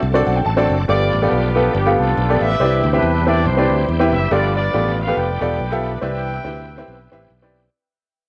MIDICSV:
0, 0, Header, 1, 5, 480
1, 0, Start_track
1, 0, Key_signature, 0, "major"
1, 0, Tempo, 428266
1, 990, Time_signature, 4, 2, 24, 8
1, 9285, End_track
2, 0, Start_track
2, 0, Title_t, "Horn section"
2, 0, Program_c, 0, 61
2, 1003, Note_on_c, 0, 71, 81
2, 1004, Note_on_c, 0, 65, 77
2, 1010, Note_on_c, 0, 74, 106
2, 1350, Note_off_c, 0, 74, 0
2, 1380, Note_on_c, 0, 59, 69
2, 1380, Note_on_c, 0, 62, 71
2, 1383, Note_on_c, 0, 67, 94
2, 1913, Note_off_c, 0, 71, 0
2, 1914, Note_off_c, 0, 65, 0
2, 1943, Note_off_c, 0, 62, 0
2, 1946, Note_off_c, 0, 67, 0
2, 1947, Note_off_c, 0, 59, 0
2, 1956, Note_on_c, 0, 62, 65
2, 1959, Note_on_c, 0, 67, 94
2, 1960, Note_on_c, 0, 59, 68
2, 2207, Note_off_c, 0, 67, 0
2, 2224, Note_off_c, 0, 62, 0
2, 2234, Note_on_c, 0, 69, 111
2, 2237, Note_on_c, 0, 65, 76
2, 2238, Note_on_c, 0, 62, 80
2, 2708, Note_off_c, 0, 69, 0
2, 2708, Note_on_c, 0, 76, 121
2, 2712, Note_on_c, 0, 71, 87
2, 2713, Note_on_c, 0, 67, 91
2, 2872, Note_off_c, 0, 59, 0
2, 2875, Note_off_c, 0, 65, 0
2, 2876, Note_off_c, 0, 62, 0
2, 3250, Note_off_c, 0, 76, 0
2, 3285, Note_off_c, 0, 71, 0
2, 3298, Note_on_c, 0, 71, 101
2, 3303, Note_on_c, 0, 64, 78
2, 3305, Note_on_c, 0, 62, 76
2, 3623, Note_off_c, 0, 67, 0
2, 3668, Note_off_c, 0, 71, 0
2, 3668, Note_on_c, 0, 74, 98
2, 3870, Note_off_c, 0, 64, 0
2, 3875, Note_off_c, 0, 74, 0
2, 3881, Note_on_c, 0, 72, 86
2, 3883, Note_on_c, 0, 64, 64
2, 3883, Note_on_c, 0, 67, 65
2, 4211, Note_off_c, 0, 62, 0
2, 4356, Note_off_c, 0, 72, 0
2, 4626, Note_on_c, 0, 76, 94
2, 4792, Note_off_c, 0, 67, 0
2, 4793, Note_off_c, 0, 64, 0
2, 4820, Note_off_c, 0, 76, 0
2, 4839, Note_on_c, 0, 74, 101
2, 4843, Note_on_c, 0, 65, 75
2, 4843, Note_on_c, 0, 71, 71
2, 5090, Note_off_c, 0, 74, 0
2, 5098, Note_off_c, 0, 71, 0
2, 5101, Note_off_c, 0, 65, 0
2, 5104, Note_on_c, 0, 74, 100
2, 5112, Note_on_c, 0, 71, 66
2, 5114, Note_on_c, 0, 65, 71
2, 5549, Note_off_c, 0, 74, 0
2, 5589, Note_on_c, 0, 77, 96
2, 5793, Note_off_c, 0, 71, 0
2, 5795, Note_off_c, 0, 77, 0
2, 5799, Note_on_c, 0, 79, 109
2, 5806, Note_on_c, 0, 71, 82
2, 5808, Note_on_c, 0, 74, 82
2, 6022, Note_off_c, 0, 65, 0
2, 6544, Note_off_c, 0, 79, 0
2, 6712, Note_off_c, 0, 71, 0
2, 6713, Note_off_c, 0, 74, 0
2, 6751, Note_on_c, 0, 79, 114
2, 6752, Note_on_c, 0, 71, 81
2, 6755, Note_on_c, 0, 76, 89
2, 8142, Note_off_c, 0, 79, 0
2, 8143, Note_off_c, 0, 71, 0
2, 8145, Note_off_c, 0, 76, 0
2, 9285, End_track
3, 0, Start_track
3, 0, Title_t, "Upright piano"
3, 0, Program_c, 1, 0
3, 157, Note_on_c, 1, 60, 92
3, 158, Note_on_c, 1, 62, 92
3, 161, Note_on_c, 1, 66, 87
3, 164, Note_on_c, 1, 69, 91
3, 171, Note_on_c, 1, 74, 111
3, 296, Note_on_c, 1, 78, 74
3, 395, Note_off_c, 1, 78, 0
3, 406, Note_on_c, 1, 79, 73
3, 421, Note_off_c, 1, 60, 0
3, 422, Note_off_c, 1, 62, 0
3, 424, Note_off_c, 1, 66, 0
3, 425, Note_off_c, 1, 69, 0
3, 428, Note_off_c, 1, 74, 0
3, 502, Note_off_c, 1, 79, 0
3, 513, Note_on_c, 1, 81, 76
3, 636, Note_on_c, 1, 60, 96
3, 638, Note_on_c, 1, 62, 84
3, 641, Note_on_c, 1, 66, 87
3, 647, Note_on_c, 1, 69, 85
3, 650, Note_on_c, 1, 74, 102
3, 844, Note_off_c, 1, 60, 0
3, 845, Note_off_c, 1, 62, 0
3, 846, Note_off_c, 1, 66, 0
3, 849, Note_off_c, 1, 69, 0
3, 851, Note_off_c, 1, 74, 0
3, 958, Note_off_c, 1, 81, 0
3, 987, Note_on_c, 1, 59, 75
3, 991, Note_on_c, 1, 65, 66
3, 992, Note_on_c, 1, 43, 64
3, 992, Note_on_c, 1, 67, 72
3, 995, Note_on_c, 1, 69, 67
3, 998, Note_on_c, 1, 74, 84
3, 1212, Note_off_c, 1, 59, 0
3, 1214, Note_off_c, 1, 65, 0
3, 1214, Note_off_c, 1, 67, 0
3, 1216, Note_off_c, 1, 69, 0
3, 1217, Note_off_c, 1, 74, 0
3, 1364, Note_on_c, 1, 59, 72
3, 1367, Note_on_c, 1, 65, 66
3, 1372, Note_on_c, 1, 67, 66
3, 1373, Note_on_c, 1, 69, 67
3, 1378, Note_on_c, 1, 74, 86
3, 1558, Note_off_c, 1, 59, 0
3, 1559, Note_off_c, 1, 65, 0
3, 1562, Note_off_c, 1, 67, 0
3, 1563, Note_off_c, 1, 69, 0
3, 1565, Note_off_c, 1, 74, 0
3, 1697, Note_off_c, 1, 43, 0
3, 1738, Note_on_c, 1, 59, 81
3, 1742, Note_on_c, 1, 65, 68
3, 1745, Note_on_c, 1, 67, 65
3, 1748, Note_on_c, 1, 69, 76
3, 1753, Note_on_c, 1, 71, 84
3, 1914, Note_off_c, 1, 59, 0
3, 1916, Note_off_c, 1, 65, 0
3, 1917, Note_off_c, 1, 67, 0
3, 1919, Note_off_c, 1, 69, 0
3, 1921, Note_off_c, 1, 71, 0
3, 2080, Note_on_c, 1, 59, 81
3, 2085, Note_on_c, 1, 65, 78
3, 2087, Note_on_c, 1, 67, 76
3, 2091, Note_on_c, 1, 69, 74
3, 2095, Note_on_c, 1, 77, 86
3, 2345, Note_off_c, 1, 59, 0
3, 2348, Note_off_c, 1, 65, 0
3, 2348, Note_off_c, 1, 67, 0
3, 2351, Note_off_c, 1, 69, 0
3, 2352, Note_off_c, 1, 77, 0
3, 2569, Note_on_c, 1, 59, 76
3, 2573, Note_on_c, 1, 65, 67
3, 2575, Note_on_c, 1, 67, 74
3, 2578, Note_on_c, 1, 69, 74
3, 2585, Note_on_c, 1, 74, 86
3, 2772, Note_off_c, 1, 59, 0
3, 2774, Note_off_c, 1, 65, 0
3, 2775, Note_off_c, 1, 67, 0
3, 2776, Note_off_c, 1, 69, 0
3, 2780, Note_off_c, 1, 74, 0
3, 2916, Note_on_c, 1, 60, 77
3, 2919, Note_on_c, 1, 64, 70
3, 2922, Note_on_c, 1, 67, 67
3, 2924, Note_on_c, 1, 48, 63
3, 2928, Note_on_c, 1, 71, 67
3, 2929, Note_on_c, 1, 74, 84
3, 3137, Note_off_c, 1, 60, 0
3, 3139, Note_off_c, 1, 64, 0
3, 3140, Note_off_c, 1, 67, 0
3, 3143, Note_off_c, 1, 71, 0
3, 3144, Note_off_c, 1, 74, 0
3, 3286, Note_on_c, 1, 60, 76
3, 3291, Note_on_c, 1, 64, 65
3, 3293, Note_on_c, 1, 67, 70
3, 3301, Note_on_c, 1, 71, 68
3, 3302, Note_on_c, 1, 76, 83
3, 3480, Note_off_c, 1, 60, 0
3, 3482, Note_off_c, 1, 64, 0
3, 3484, Note_off_c, 1, 67, 0
3, 3487, Note_off_c, 1, 71, 0
3, 3488, Note_off_c, 1, 76, 0
3, 3623, Note_off_c, 1, 48, 0
3, 3661, Note_on_c, 1, 60, 77
3, 3666, Note_on_c, 1, 64, 69
3, 3670, Note_on_c, 1, 67, 64
3, 3675, Note_on_c, 1, 71, 70
3, 3675, Note_on_c, 1, 76, 88
3, 3836, Note_off_c, 1, 60, 0
3, 3838, Note_off_c, 1, 64, 0
3, 3840, Note_off_c, 1, 67, 0
3, 3843, Note_off_c, 1, 71, 0
3, 3843, Note_off_c, 1, 76, 0
3, 4003, Note_on_c, 1, 60, 80
3, 4009, Note_on_c, 1, 64, 74
3, 4009, Note_on_c, 1, 67, 71
3, 4014, Note_on_c, 1, 71, 73
3, 4018, Note_on_c, 1, 74, 88
3, 4267, Note_off_c, 1, 60, 0
3, 4269, Note_off_c, 1, 64, 0
3, 4270, Note_off_c, 1, 67, 0
3, 4272, Note_off_c, 1, 71, 0
3, 4274, Note_off_c, 1, 74, 0
3, 4479, Note_on_c, 1, 60, 89
3, 4485, Note_on_c, 1, 64, 84
3, 4487, Note_on_c, 1, 67, 80
3, 4491, Note_on_c, 1, 71, 82
3, 4494, Note_on_c, 1, 76, 97
3, 4687, Note_off_c, 1, 60, 0
3, 4689, Note_off_c, 1, 64, 0
3, 4690, Note_off_c, 1, 67, 0
3, 4693, Note_off_c, 1, 71, 0
3, 4694, Note_off_c, 1, 76, 0
3, 4825, Note_on_c, 1, 59, 69
3, 4829, Note_on_c, 1, 65, 65
3, 4832, Note_on_c, 1, 43, 66
3, 4834, Note_on_c, 1, 67, 67
3, 4835, Note_on_c, 1, 69, 64
3, 4841, Note_on_c, 1, 74, 81
3, 5120, Note_off_c, 1, 59, 0
3, 5122, Note_off_c, 1, 65, 0
3, 5124, Note_off_c, 1, 67, 0
3, 5125, Note_off_c, 1, 69, 0
3, 5128, Note_off_c, 1, 74, 0
3, 5307, Note_on_c, 1, 59, 74
3, 5312, Note_on_c, 1, 65, 67
3, 5313, Note_on_c, 1, 67, 63
3, 5315, Note_on_c, 1, 69, 64
3, 5322, Note_on_c, 1, 74, 77
3, 5532, Note_off_c, 1, 59, 0
3, 5535, Note_off_c, 1, 65, 0
3, 5535, Note_off_c, 1, 67, 0
3, 5536, Note_off_c, 1, 43, 0
3, 5536, Note_off_c, 1, 69, 0
3, 5540, Note_off_c, 1, 74, 0
3, 5683, Note_on_c, 1, 59, 72
3, 5685, Note_on_c, 1, 65, 66
3, 5689, Note_on_c, 1, 67, 71
3, 5694, Note_on_c, 1, 69, 71
3, 5696, Note_on_c, 1, 71, 84
3, 5878, Note_off_c, 1, 59, 0
3, 5879, Note_off_c, 1, 65, 0
3, 5881, Note_off_c, 1, 67, 0
3, 5883, Note_off_c, 1, 69, 0
3, 5884, Note_off_c, 1, 71, 0
3, 6059, Note_on_c, 1, 59, 75
3, 6060, Note_on_c, 1, 65, 72
3, 6061, Note_on_c, 1, 67, 71
3, 6066, Note_on_c, 1, 69, 73
3, 6073, Note_on_c, 1, 74, 89
3, 6234, Note_off_c, 1, 59, 0
3, 6234, Note_off_c, 1, 65, 0
3, 6235, Note_off_c, 1, 67, 0
3, 6237, Note_off_c, 1, 69, 0
3, 6240, Note_off_c, 1, 74, 0
3, 6403, Note_on_c, 1, 59, 93
3, 6406, Note_on_c, 1, 65, 86
3, 6409, Note_on_c, 1, 67, 84
3, 6415, Note_on_c, 1, 69, 87
3, 6415, Note_on_c, 1, 76, 100
3, 6607, Note_off_c, 1, 59, 0
3, 6609, Note_off_c, 1, 65, 0
3, 6610, Note_off_c, 1, 67, 0
3, 6613, Note_off_c, 1, 69, 0
3, 6613, Note_off_c, 1, 76, 0
3, 6740, Note_on_c, 1, 60, 78
3, 6745, Note_on_c, 1, 48, 68
3, 6745, Note_on_c, 1, 64, 63
3, 6749, Note_on_c, 1, 67, 69
3, 6750, Note_on_c, 1, 71, 68
3, 6754, Note_on_c, 1, 74, 86
3, 7036, Note_off_c, 1, 60, 0
3, 7038, Note_off_c, 1, 64, 0
3, 7040, Note_off_c, 1, 67, 0
3, 7041, Note_off_c, 1, 71, 0
3, 7043, Note_off_c, 1, 74, 0
3, 7222, Note_on_c, 1, 60, 70
3, 7227, Note_on_c, 1, 64, 70
3, 7230, Note_on_c, 1, 67, 67
3, 7231, Note_on_c, 1, 71, 68
3, 7237, Note_on_c, 1, 76, 75
3, 7448, Note_off_c, 1, 60, 0
3, 7451, Note_off_c, 1, 48, 0
3, 7451, Note_off_c, 1, 64, 0
3, 7452, Note_off_c, 1, 67, 0
3, 7452, Note_off_c, 1, 71, 0
3, 7456, Note_off_c, 1, 76, 0
3, 7597, Note_on_c, 1, 60, 96
3, 7599, Note_on_c, 1, 64, 90
3, 7602, Note_on_c, 1, 67, 82
3, 7609, Note_on_c, 1, 71, 79
3, 7611, Note_on_c, 1, 76, 96
3, 7793, Note_off_c, 1, 60, 0
3, 7794, Note_off_c, 1, 64, 0
3, 7795, Note_off_c, 1, 67, 0
3, 7799, Note_off_c, 1, 71, 0
3, 7800, Note_off_c, 1, 76, 0
3, 7976, Note_on_c, 1, 60, 93
3, 7981, Note_on_c, 1, 64, 83
3, 7982, Note_on_c, 1, 67, 83
3, 7986, Note_on_c, 1, 71, 83
3, 7988, Note_on_c, 1, 76, 103
3, 8150, Note_off_c, 1, 60, 0
3, 8152, Note_off_c, 1, 64, 0
3, 8153, Note_off_c, 1, 67, 0
3, 8155, Note_off_c, 1, 71, 0
3, 8156, Note_off_c, 1, 76, 0
3, 8319, Note_on_c, 1, 60, 83
3, 8320, Note_on_c, 1, 64, 81
3, 8327, Note_on_c, 1, 67, 75
3, 8327, Note_on_c, 1, 71, 80
3, 8331, Note_on_c, 1, 74, 93
3, 8524, Note_off_c, 1, 60, 0
3, 8524, Note_off_c, 1, 64, 0
3, 8527, Note_off_c, 1, 67, 0
3, 8527, Note_off_c, 1, 71, 0
3, 8529, Note_off_c, 1, 74, 0
3, 9285, End_track
4, 0, Start_track
4, 0, Title_t, "Tonewheel organ"
4, 0, Program_c, 2, 16
4, 0, Note_on_c, 2, 54, 68
4, 0, Note_on_c, 2, 57, 59
4, 0, Note_on_c, 2, 60, 60
4, 0, Note_on_c, 2, 62, 60
4, 0, Note_on_c, 2, 69, 72
4, 520, Note_on_c, 2, 81, 81
4, 766, Note_off_c, 2, 81, 0
4, 786, Note_on_c, 2, 74, 76
4, 954, Note_off_c, 2, 69, 0
4, 955, Note_off_c, 2, 62, 0
4, 956, Note_off_c, 2, 57, 0
4, 957, Note_off_c, 2, 60, 0
4, 979, Note_off_c, 2, 74, 0
4, 986, Note_off_c, 2, 54, 0
4, 1004, Note_on_c, 2, 62, 60
4, 1004, Note_on_c, 2, 66, 54
4, 1006, Note_on_c, 2, 57, 57
4, 1006, Note_on_c, 2, 59, 60
4, 1008, Note_on_c, 2, 53, 64
4, 1060, Note_on_c, 2, 67, 76
4, 1062, Note_off_c, 2, 66, 0
4, 2881, Note_off_c, 2, 62, 0
4, 2882, Note_off_c, 2, 59, 0
4, 2883, Note_off_c, 2, 53, 0
4, 2883, Note_off_c, 2, 57, 0
4, 2910, Note_off_c, 2, 67, 0
4, 2929, Note_on_c, 2, 52, 62
4, 2929, Note_on_c, 2, 55, 61
4, 2929, Note_on_c, 2, 62, 60
4, 2933, Note_on_c, 2, 65, 61
4, 2934, Note_on_c, 2, 60, 61
4, 2988, Note_off_c, 2, 65, 0
4, 2988, Note_on_c, 2, 67, 76
4, 4802, Note_off_c, 2, 52, 0
4, 4802, Note_off_c, 2, 55, 0
4, 4802, Note_off_c, 2, 62, 0
4, 4805, Note_off_c, 2, 60, 0
4, 4819, Note_off_c, 2, 67, 0
4, 4831, Note_on_c, 2, 59, 57
4, 4833, Note_on_c, 2, 67, 73
4, 4835, Note_on_c, 2, 53, 64
4, 4836, Note_on_c, 2, 57, 55
4, 4837, Note_on_c, 2, 62, 59
4, 6711, Note_off_c, 2, 59, 0
4, 6712, Note_off_c, 2, 67, 0
4, 6713, Note_off_c, 2, 53, 0
4, 6714, Note_off_c, 2, 57, 0
4, 6714, Note_off_c, 2, 62, 0
4, 6754, Note_on_c, 2, 62, 59
4, 6756, Note_on_c, 2, 59, 65
4, 6759, Note_on_c, 2, 52, 72
4, 6759, Note_on_c, 2, 60, 60
4, 6759, Note_on_c, 2, 67, 75
4, 8629, Note_off_c, 2, 62, 0
4, 8630, Note_off_c, 2, 59, 0
4, 8632, Note_off_c, 2, 52, 0
4, 8632, Note_off_c, 2, 60, 0
4, 8632, Note_off_c, 2, 67, 0
4, 9285, End_track
5, 0, Start_track
5, 0, Title_t, "Fingered electric bass"
5, 0, Program_c, 3, 33
5, 29, Note_on_c, 3, 36, 91
5, 258, Note_off_c, 3, 36, 0
5, 299, Note_on_c, 3, 35, 91
5, 477, Note_off_c, 3, 35, 0
5, 510, Note_on_c, 3, 33, 82
5, 739, Note_off_c, 3, 33, 0
5, 780, Note_on_c, 3, 30, 91
5, 959, Note_off_c, 3, 30, 0
5, 996, Note_on_c, 3, 31, 104
5, 1223, Note_off_c, 3, 31, 0
5, 1267, Note_on_c, 3, 33, 84
5, 1443, Note_off_c, 3, 33, 0
5, 1478, Note_on_c, 3, 35, 82
5, 1883, Note_off_c, 3, 35, 0
5, 1958, Note_on_c, 3, 31, 106
5, 2185, Note_off_c, 3, 31, 0
5, 2228, Note_on_c, 3, 36, 93
5, 2404, Note_off_c, 3, 36, 0
5, 2438, Note_on_c, 3, 35, 96
5, 2665, Note_off_c, 3, 35, 0
5, 2702, Note_on_c, 3, 33, 88
5, 2881, Note_off_c, 3, 33, 0
5, 2911, Note_on_c, 3, 36, 87
5, 3141, Note_off_c, 3, 36, 0
5, 3180, Note_on_c, 3, 38, 98
5, 3360, Note_off_c, 3, 38, 0
5, 3393, Note_on_c, 3, 40, 96
5, 3873, Note_on_c, 3, 36, 94
5, 3890, Note_off_c, 3, 40, 0
5, 4102, Note_off_c, 3, 36, 0
5, 4141, Note_on_c, 3, 38, 85
5, 4320, Note_off_c, 3, 38, 0
5, 4356, Note_on_c, 3, 40, 93
5, 4620, Note_on_c, 3, 30, 96
5, 4637, Note_off_c, 3, 40, 0
5, 4799, Note_off_c, 3, 30, 0
5, 4831, Note_on_c, 3, 31, 98
5, 5239, Note_off_c, 3, 31, 0
5, 5313, Note_on_c, 3, 33, 91
5, 5720, Note_off_c, 3, 33, 0
5, 5794, Note_on_c, 3, 29, 92
5, 6022, Note_off_c, 3, 29, 0
5, 6065, Note_on_c, 3, 28, 92
5, 6242, Note_off_c, 3, 28, 0
5, 6271, Note_on_c, 3, 35, 86
5, 6678, Note_off_c, 3, 35, 0
5, 6748, Note_on_c, 3, 36, 103
5, 7156, Note_off_c, 3, 36, 0
5, 7227, Note_on_c, 3, 38, 90
5, 7635, Note_off_c, 3, 38, 0
5, 7711, Note_on_c, 3, 35, 98
5, 7938, Note_off_c, 3, 35, 0
5, 7981, Note_on_c, 3, 33, 86
5, 8158, Note_off_c, 3, 33, 0
5, 8185, Note_on_c, 3, 35, 91
5, 8593, Note_off_c, 3, 35, 0
5, 9285, End_track
0, 0, End_of_file